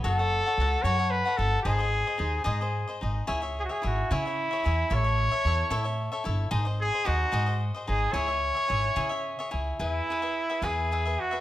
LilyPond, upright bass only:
\new Staff \with { instrumentName = "Upright bass" } { \clef bass \time 6/8 \key cis \minor \tempo 4. = 74 fis,,4 cis,8 fis,4 g,,8 | gis,,4 dis,8 gis,4 gis,,8 | cis,4 gis,,8 cis4 e,8 | a,,4 e,8 a,4 g,,8 |
gis,,4 dis,8 gis,4 gis,,8 | cis,4 gis,,8 cis4 cis,8 | \key e \major e,8 r4 e,4. | }